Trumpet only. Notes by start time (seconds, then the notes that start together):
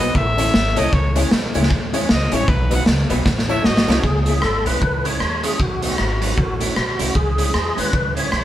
Already playing: D#5
0.17 E5
0.78 D#5
0.93 C#5
2.11 D#5
2.34 C#5
2.48 B4
2.75 F#5
3.50 E5
3.65 D#5